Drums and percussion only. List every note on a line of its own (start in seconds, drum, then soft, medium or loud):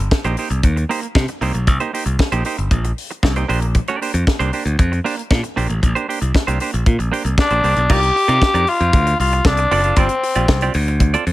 0.11 kick medium
0.11 snare loud
0.24 closed hi-hat soft
0.37 open hi-hat medium
0.51 closed hi-hat soft
0.63 kick loud
0.63 closed hi-hat medium
0.77 closed hi-hat soft
0.90 open hi-hat medium
1.03 closed hi-hat soft
1.15 kick loud
1.15 snare loud
1.28 closed hi-hat soft
1.42 open hi-hat medium
1.54 closed hi-hat soft
1.67 kick loud
1.67 closed hi-hat medium
1.80 closed hi-hat soft
1.94 open hi-hat medium
2.06 closed hi-hat medium
2.19 kick loud
2.19 snare loud
2.32 closed hi-hat soft
2.45 open hi-hat medium
2.59 closed hi-hat soft
2.71 kick loud
2.71 closed hi-hat medium
2.84 closed hi-hat soft
2.98 open hi-hat medium
3.11 closed hi-hat soft
3.23 kick loud
3.23 snare loud
3.36 closed hi-hat soft
3.49 open hi-hat medium
3.62 closed hi-hat soft
3.74 kick loud
3.74 closed hi-hat medium
3.87 closed hi-hat soft
4.02 open hi-hat medium
4.14 closed hi-hat soft
4.27 kick loud
4.27 snare loud
4.40 closed hi-hat soft
4.53 open hi-hat medium
4.67 closed hi-hat soft
4.79 kick loud
4.79 closed hi-hat medium
4.92 closed hi-hat soft
5.06 open hi-hat medium
5.19 closed hi-hat soft
5.31 kick loud
5.31 snare loud
5.44 closed hi-hat soft
5.57 open hi-hat medium
5.70 closed hi-hat soft
5.83 kick loud
5.83 closed hi-hat medium
5.96 closed hi-hat soft
6.10 open hi-hat medium
6.22 closed hi-hat medium
6.35 kick loud
6.35 snare loud
6.48 closed hi-hat soft
6.60 open hi-hat medium
6.74 closed hi-hat soft
6.86 kick loud
6.86 closed hi-hat soft
7.00 closed hi-hat soft
7.13 open hi-hat medium
7.26 closed hi-hat soft
7.38 kick loud
7.38 snare loud
7.50 closed hi-hat soft
7.64 open hi-hat soft
7.76 closed hi-hat soft
7.90 kick loud
7.90 crash medium
8.03 closed hi-hat soft
8.17 open hi-hat medium
8.29 closed hi-hat medium
8.42 kick loud
8.42 snare loud
8.55 closed hi-hat medium
8.67 open hi-hat medium
8.81 closed hi-hat soft
8.93 kick loud
8.93 closed hi-hat medium
9.06 closed hi-hat soft
9.20 open hi-hat medium
9.32 closed hi-hat soft
9.45 kick loud
9.45 snare loud
9.57 closed hi-hat soft
9.71 open hi-hat medium
9.84 closed hi-hat soft
9.96 kick loud
9.96 closed hi-hat medium
10.09 closed hi-hat soft
10.23 open hi-hat medium
10.35 closed hi-hat medium
10.48 kick loud
10.48 snare loud
10.61 closed hi-hat soft
10.74 open hi-hat medium
10.88 closed hi-hat soft
11.00 kick loud
11.00 closed hi-hat medium
11.14 closed hi-hat soft
11.27 open hi-hat medium